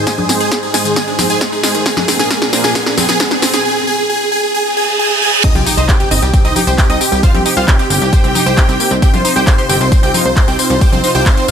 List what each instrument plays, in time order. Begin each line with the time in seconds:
Already playing: analog synth pad G#2 G#3 D#4 C5, riser
0.07 synth arpeggio sound G#3, supersaw synth G#4 G#5, kick, snare, closed hi-hat, tambourine
0.18 synth arpeggio sound D4, supersaw synth G#4, tambourine, high conga
0.29 synth arpeggio sound C4, supersaw synth G#4, snare, open hi-hat, tambourine
0.40 synth arpeggio sound G#4, supersaw synth G#4 G#5, closed hi-hat, tambourine
0.52 synth arpeggio sound G#3, supersaw synth G#4, kick, snare, closed hi-hat, tambourine
0.63 synth arpeggio sound D#4, supersaw synth G#4, tambourine
0.74 synth arpeggio sound G#3, supersaw synth G#4 G#5, snare, open hi-hat, tambourine
0.85 synth arpeggio sound D#3, supersaw synth G#4, closed hi-hat, tambourine
0.96 synth arpeggio sound G#3, supersaw synth G#4 G#5, kick, snare, closed hi-hat, tambourine
1.08 synth arpeggio sound D4, supersaw synth G#4, tambourine
1.19 synth arpeggio sound C4, supersaw synth G#4, snare, open hi-hat, tambourine, high conga
1.30 supersaw synth G#4 G#5, synth arpeggio sound G#4, closed hi-hat, tambourine
1.41 synth arpeggio sound G#3, supersaw synth G#4, kick, snare, closed hi-hat, tambourine
1.52 synth arpeggio sound D#4, supersaw synth G#4, tambourine
1.63 synth arpeggio sound G#3, supersaw synth G#4 G#5, snare, open hi-hat, tambourine
1.75 synth arpeggio sound D#3, supersaw synth G#4, closed hi-hat, tambourine
1.86 analog synth pad A#2 F3 D4 A#4, synth arpeggio sound G#3, supersaw synth G#4 G#5, kick, snare, closed hi-hat, tambourine
1.97 synth arpeggio sound D4, supersaw synth G#4, snare, tambourine, high conga
2.08 synth arpeggio sound C4, supersaw synth G#4, snare, open hi-hat, tambourine
2.19 synth arpeggio sound G#4, supersaw synth G#4 G#5, snare, closed hi-hat, tambourine
2.30 synth arpeggio sound G#3, supersaw synth G#4 G#5, kick, snare, closed hi-hat, tambourine
2.42 synth arpeggio sound D4, supersaw synth G#4, snare, tambourine
2.53 synth arpeggio sound C4, supersaw synth G#4, snare, open hi-hat, tambourine
2.64 synth arpeggio sound G#4, supersaw synth G#4 G#5, snare, closed hi-hat, tambourine
2.75 synth arpeggio sound G#3, supersaw synth G#4 G#5, kick, snare, closed hi-hat, tambourine
2.86 synth arpeggio sound D4, supersaw synth G#4, snare, tambourine
2.98 synth arpeggio sound C4, supersaw synth G#4, snare, open hi-hat, tambourine, high conga
3.09 synth arpeggio sound G#4, supersaw synth G#4 G#5, snare, closed hi-hat, tambourine
3.20 synth arpeggio sound G#3, supersaw synth G#4 G#5, kick, snare, closed hi-hat, tambourine
3.31 synth arpeggio sound D4, supersaw synth G#4, snare, tambourine
3.42 synth arpeggio sound C4, supersaw synth G#4, snare, open hi-hat, tambourine
3.54 synth arpeggio sound G#4, supersaw synth G#4 G#5, snare, closed hi-hat, tambourine
3.65 supersaw synth G#4 G#5
3.76 supersaw synth G#4
3.87 supersaw synth G#4 G#5
3.98 supersaw synth G#4
4.09 supersaw synth G#4 G#5
4.21 supersaw synth G#4
4.32 supersaw synth G#4 G#5
4.43 supersaw synth G#4
4.54 supersaw synth G#4 G#5, reverse cymbal
4.66 supersaw synth G#4
4.77 supersaw synth G#4 G#5
4.88 supersaw synth G#4
4.99 supersaw synth G#4 G#5
5.10 supersaw synth G#4
5.22 supersaw synth G#4 G#5
5.33 supersaw synth G#4
5.44 analog synth pad C3 C4 D#4 G4, synth arpeggio sound C4, supersaw synth D#4 D#5, digital synth lead D#6, kick, closed hi-hat, crash, tambourine, impact
5.55 analog synth bass C2, synth arpeggio sound F4, supersaw synth G4, digital synth lead G5, closed hi-hat, tambourine, high conga
5.66 synth arpeggio sound D#4, supersaw synth G4, digital synth lead G5, open hi-hat, tambourine
5.77 analog synth bass C2, supersaw synth D#4 D#5, synth arpeggio sound C5, digital synth lead D#6, closed hi-hat, tambourine
5.88 synth arpeggio sound C4, supersaw synth G4, digital synth lead G5, kick, clap, closed hi-hat, tambourine
6.00 supersaw synth G4, synth arpeggio sound G4, digital synth lead G5, closed hi-hat, tambourine
6.11 analog synth bass G1, synth arpeggio sound C4, supersaw synth D#4 D#5, digital synth lead D#6, open hi-hat, tambourine
6.22 analog synth bass C2, synth arpeggio sound G3, supersaw synth G4, digital synth lead G5, closed hi-hat, tambourine
6.34 synth arpeggio sound C4, supersaw synth G4, digital synth lead G5, kick, closed hi-hat, tambourine
6.45 analog synth bass C2, synth arpeggio sound C4, supersaw synth D#4 D#5, digital synth lead D#6, closed hi-hat, tambourine
6.56 synth arpeggio sound D#4, supersaw synth G4, digital synth lead G5, open hi-hat, tambourine, high conga
6.67 analog synth bass C2, supersaw synth G4, synth arpeggio sound C5, digital synth lead G5, closed hi-hat, tambourine
6.78 synth arpeggio sound C4, supersaw synth G4, digital synth lead G5, kick, clap, closed hi-hat, tambourine
6.90 analog synth bass C2, synth arpeggio sound C4, supersaw synth D#4 D#5, digital synth lead D#6, closed hi-hat, tambourine
7.01 synth arpeggio sound C4, supersaw synth G4, digital synth lead G5, open hi-hat, tambourine
7.12 analog synth bass C2, synth arpeggio sound G3, supersaw synth G4, digital synth lead G5, closed hi-hat, tambourine
7.23 supersaw synth F4 F5, synth arpeggio sound C5, digital synth lead F6, kick, closed hi-hat, tambourine
7.34 analog synth bass C2, synth arpeggio sound C4, supersaw synth G4, digital synth lead G5, closed hi-hat, tambourine, high conga
7.46 synth arpeggio sound D#4, supersaw synth G4, digital synth lead G5, open hi-hat, tambourine
7.57 analog synth bass C2, supersaw synth F4 F5, synth arpeggio sound C5, digital synth lead F6, closed hi-hat, tambourine
7.68 synth arpeggio sound C4, supersaw synth G4, digital synth lead G5, kick, clap, closed hi-hat, tambourine
7.79 synth arpeggio sound C4, supersaw synth G4, digital synth lead G5, closed hi-hat, tambourine
7.90 analog synth bass G1, synth arpeggio sound C4, supersaw synth G4 G5, digital synth lead G6, open hi-hat, tambourine
8.02 analog synth bass C2, synth arpeggio sound G4, closed hi-hat, tambourine
8.13 synth arpeggio sound C5, kick, closed hi-hat, tambourine
8.24 analog synth bass C2, synth arpeggio sound C4, closed hi-hat, tambourine
8.35 synth arpeggio sound D#4, open hi-hat, tambourine, high conga
8.46 analog synth bass C2, synth arpeggio sound C5, closed hi-hat, tambourine
8.57 synth arpeggio sound C4, kick, clap, closed hi-hat, tambourine
8.69 analog synth bass C2, synth arpeggio sound C4, closed hi-hat, tambourine
8.80 synth arpeggio sound A#3, open hi-hat, tambourine
8.91 analog synth bass C2, synth arpeggio sound C4, closed hi-hat, tambourine
9.02 synth arpeggio sound C4, analog synth pad F4, supersaw synth G4 G5, digital synth lead G6, kick, closed hi-hat, tambourine
9.13 analog synth bass C2, synth arpeggio sound F4, supersaw synth C5, digital synth lead C6, closed hi-hat, tambourine, high conga
9.25 synth arpeggio sound D#4, supersaw synth C5, digital synth lead C6, open hi-hat, tambourine
9.36 analog synth bass C2, supersaw synth G4 G5, synth arpeggio sound C5, digital synth lead G6, closed hi-hat, tambourine
9.47 synth arpeggio sound C4, supersaw synth C5, digital synth lead C6, kick, clap, closed hi-hat, tambourine
9.58 synth arpeggio sound G4, supersaw synth C5, digital synth lead C6, closed hi-hat, tambourine
9.69 analog synth bass G1, synth arpeggio sound C4, supersaw synth G4 G5, digital synth lead G6, open hi-hat, tambourine
9.81 analog synth bass C2, synth arpeggio sound G3, supersaw synth C5, digital synth lead C6, closed hi-hat, tambourine
9.92 synth arpeggio sound C4, supersaw synth C5, digital synth lead C6, kick, closed hi-hat, tambourine
10.03 analog synth bass C2, synth arpeggio sound C4, supersaw synth G4 G5, digital synth lead G6, closed hi-hat, tambourine
10.14 synth arpeggio sound D#4, supersaw synth C5, digital synth lead C6, open hi-hat, tambourine, high conga
10.25 analog synth bass C2, synth arpeggio sound C5, supersaw synth C5, digital synth lead C6, closed hi-hat, tambourine
10.37 synth arpeggio sound C4, supersaw synth C5, digital synth lead C6, kick, clap, closed hi-hat, tambourine
10.48 analog synth bass C2, synth arpeggio sound C4, supersaw synth G4 G5, digital synth lead G6, closed hi-hat, tambourine
10.59 synth arpeggio sound C4, supersaw synth C5, digital synth lead C6, open hi-hat, tambourine
10.70 analog synth bass C2, synth arpeggio sound G3, supersaw synth C5, digital synth lead C6, closed hi-hat, tambourine
10.81 supersaw synth G4 G5, synth arpeggio sound C5, digital synth lead G6, kick, closed hi-hat, tambourine
10.92 analog synth bass C2, synth arpeggio sound C4, supersaw synth C5, digital synth lead C6, closed hi-hat, tambourine, high conga
11.04 synth arpeggio sound D#4, supersaw synth C5, digital synth lead C6, open hi-hat, tambourine
11.15 analog synth bass C2, supersaw synth G4 G5, synth arpeggio sound C5, digital synth lead G6, closed hi-hat, tambourine
11.26 synth arpeggio sound C4, supersaw synth C5, digital synth lead C6, kick, clap, closed hi-hat, tambourine
11.37 synth arpeggio sound C4, supersaw synth C5, digital synth lead C6, closed hi-hat, tambourine